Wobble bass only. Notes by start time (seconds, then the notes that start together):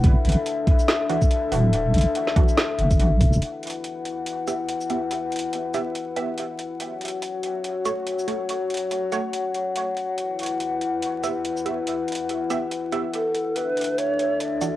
0.04 D1
0.25 A1
1.52 D1
1.94 A1
2.78 F#1
3.00 A1
3.21 D1
3.33 D1